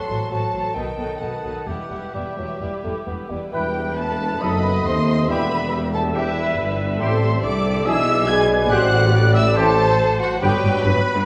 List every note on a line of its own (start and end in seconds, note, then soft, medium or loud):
0.00 0.28 F#3 soft
0.00 0.28 A4 soft
0.00 0.31 C6 medium
0.09 0.17 A1 soft
0.09 0.17 A2 soft
0.09 0.31 F#3 soft
0.09 0.30 F#4 soft
0.09 0.30 A4 soft
0.09 0.30 C5 soft
0.30 0.38 A1 soft
0.30 0.39 A2 soft
0.30 0.77 F#3 soft
0.30 0.52 F#3 soft
0.30 0.52 F#4 soft
0.30 0.74 A4 soft
0.30 0.53 A4 soft
0.30 0.53 C5 soft
0.30 0.75 A5 medium
0.53 0.61 A1 soft
0.53 0.61 A2 soft
0.53 0.74 F#3 soft
0.53 0.75 F#4 soft
0.53 0.75 A4 soft
0.53 0.75 C5 soft
0.75 0.83 B1 soft
0.75 0.84 B2 soft
0.75 1.20 D#3 soft
0.75 0.96 F#3 soft
0.75 0.97 D#4 soft
0.75 1.20 A4 soft
0.75 0.97 A4 soft
0.75 0.97 B4 soft
0.75 1.21 G5 medium
0.97 1.05 B1 soft
0.97 1.06 B2 soft
0.97 1.19 F#3 soft
0.97 1.19 D#4 soft
0.97 1.20 A4 soft
0.97 1.19 B4 soft
1.20 1.29 B1 soft
1.20 1.29 B2 soft
1.20 1.69 D#3 soft
1.20 1.42 F#3 soft
1.20 1.42 D#4 soft
1.20 1.69 A4 soft
1.20 1.44 A4 soft
1.20 1.43 B4 soft
1.20 1.65 F#5 medium
1.43 1.53 B1 soft
1.43 1.52 B2 soft
1.43 1.67 F#3 soft
1.43 1.67 D#4 soft
1.43 1.67 A4 soft
1.43 1.66 B4 soft
1.66 1.76 E1 soft
1.66 1.75 E2 soft
1.66 2.14 E3 soft
1.66 1.89 G3 soft
1.66 1.90 E4 soft
1.66 1.90 G4 soft
1.66 2.13 G4 soft
1.66 1.90 B4 soft
1.66 2.13 F#5 medium
1.90 2.00 E1 soft
1.90 1.99 E2 soft
1.90 2.14 G3 soft
1.90 2.13 E4 soft
1.90 2.13 G4 soft
1.90 2.13 B4 soft
2.14 2.23 E1 soft
2.14 2.22 E2 soft
2.14 2.37 G3 soft
2.14 2.38 G3 soft
2.14 2.38 E4 soft
2.14 3.28 G4 soft
2.14 2.36 G4 soft
2.14 2.37 B4 soft
2.14 3.07 E5 soft
2.38 2.47 E1 soft
2.38 2.46 E2 soft
2.38 2.63 F#3 soft
2.38 2.60 G3 soft
2.38 2.60 E4 soft
2.38 2.59 G4 soft
2.38 2.59 B4 soft
2.60 2.70 E1 soft
2.60 2.69 E2 soft
2.60 2.84 G3 soft
2.60 2.84 E4 soft
2.60 2.82 G4 soft
2.60 2.81 B4 soft
2.83 2.92 E1 soft
2.83 2.92 E2 soft
2.83 3.07 G3 soft
2.83 2.95 A3 soft
2.83 3.07 E4 soft
2.83 3.05 G4 soft
2.83 3.06 B4 soft
3.06 3.15 E1 soft
3.06 3.15 E2 soft
3.06 3.30 G3 soft
3.06 3.32 B3 soft
3.06 3.31 E4 soft
3.06 3.28 G4 soft
3.06 3.28 B4 soft
3.29 3.39 E1 soft
3.29 3.38 E2 soft
3.29 3.52 G3 soft
3.29 3.54 G3 soft
3.29 3.54 E4 soft
3.29 3.52 G4 soft
3.29 3.53 B4 soft
3.52 4.43 E1 medium
3.52 4.38 E1 medium
3.52 4.38 E2 medium
3.52 4.42 E3 medium
3.52 3.69 E3 medium
3.52 3.94 G3 medium
3.52 3.69 E4 medium
3.52 3.95 G4 medium
3.52 4.43 B4 medium
3.52 3.69 B4 medium
3.52 3.94 G5 medium
3.52 3.95 G5 medium
3.96 4.41 A3 medium
3.96 4.41 A4 medium
3.96 4.41 A5 medium
4.40 4.85 F#1 medium
4.40 4.86 F#1 medium
4.40 4.86 F#2 medium
4.40 4.57 F#3 medium
4.40 5.30 A3 medium
4.40 4.85 B3 medium
4.40 4.57 D#4 medium
4.40 4.57 A4 medium
4.40 4.85 B4 medium
4.40 5.30 D#5 medium
4.40 5.25 D#5 medium
4.40 4.85 B5 medium
4.40 4.87 B5 medium
4.85 5.28 D#2 medium
4.85 5.31 D#2 medium
4.85 5.29 C4 medium
4.85 5.30 C5 medium
4.85 5.29 C6 medium
4.85 5.31 C6 medium
5.29 6.58 E1 medium
5.29 6.57 E1 medium
5.29 6.58 E2 medium
5.29 5.45 E3 medium
5.29 7.86 G3 medium
5.29 5.93 B3 medium
5.29 5.44 E4 medium
5.29 5.45 G4 medium
5.29 5.93 B4 medium
5.29 7.88 E5 medium
5.29 5.72 E5 medium
5.29 5.92 B5 medium
5.29 5.93 B5 medium
5.72 6.15 G4 medium
5.93 6.15 A3 medium
5.93 6.02 A4 medium
5.93 6.01 A5 medium
5.93 6.17 A5 medium
6.14 6.30 E3 medium
6.14 6.78 E3 medium
6.14 6.30 E4 medium
6.14 6.78 E4 medium
6.14 6.30 G4 medium
6.14 6.99 B4 medium
6.14 6.78 E5 medium
6.14 6.80 E5 medium
6.58 7.02 G1 medium
6.58 7.00 G1 medium
6.58 7.00 G2 medium
7.00 7.43 A1 medium
7.00 7.43 A2 medium
7.00 7.16 E3 medium
7.00 7.40 C4 medium
7.00 7.16 E4 medium
7.00 7.16 G4 medium
7.00 7.42 A4 medium
7.00 7.41 C5 medium
7.00 7.40 C6 medium
7.42 7.86 C2 medium
7.42 7.88 C2 medium
7.42 7.86 C3 medium
7.42 7.86 D4 medium
7.42 7.85 A4 medium
7.42 7.87 D5 medium
7.42 7.87 D6 medium
7.42 7.86 D6 medium
7.85 8.72 B1 medium
7.85 8.71 B1 medium
7.85 8.70 B2 medium
7.85 8.01 E3 medium
7.85 8.72 G#3 medium
7.85 8.01 D4 medium
7.85 8.27 E4 medium
7.85 8.28 G#4 medium
7.85 8.02 G#4 medium
7.85 9.58 D5 medium
7.85 8.29 E5 medium
7.85 8.29 E6 medium
7.85 8.28 E6 loud
8.27 8.69 G#4 medium
8.27 8.70 B4 medium
8.27 8.71 G#5 medium
8.27 8.69 G#6 medium
8.27 8.70 G#6 loud
8.69 10.24 A1 medium
8.69 10.42 A1 medium
8.69 10.42 A2 medium
8.69 8.86 E3 medium
8.69 10.14 G3 medium
8.69 8.86 C4 medium
8.69 9.34 F#4 loud
8.69 8.86 G4 medium
8.69 9.12 C5 medium
8.69 9.35 F#5 loud
8.69 9.33 F#6 medium
8.69 9.33 F#6 loud
9.12 9.55 D5 medium
9.34 9.56 E4 medium
9.34 9.42 E5 medium
9.34 9.40 E6 medium
9.34 9.56 E6 loud
9.55 9.72 E3 medium
9.55 10.21 A3 loud
9.55 9.72 C4 medium
9.55 9.71 G4 medium
9.55 10.18 A4 loud
9.55 10.41 C5 medium
9.55 10.14 C5 medium
9.55 10.19 A5 loud
9.55 10.21 A5 loud
10.19 10.42 F#3 medium
10.19 10.41 F#4 medium
10.19 10.41 F#5 medium
10.19 10.41 F#5 loud
10.41 10.46 G1 loud
10.41 10.46 G1 medium
10.41 10.46 G2 medium
10.41 10.57 D3 medium
10.41 11.25 F#3 medium
10.41 10.84 G3 medium
10.41 10.57 B3 medium
10.41 10.83 G4 medium
10.41 10.57 G4 medium
10.41 11.24 B4 loud
10.41 11.25 B4 medium
10.41 10.83 G5 loud
10.41 10.83 G5 medium
10.63 10.67 G1 medium
10.63 10.67 G2 medium
10.73 10.78 G2 medium
10.84 10.88 G1 loud
10.84 10.88 G2 medium
10.84 11.25 B3 medium
10.84 11.25 B4 loud
10.84 11.25 B5 loud
10.95 10.99 G2 medium
11.15 11.19 G2 loud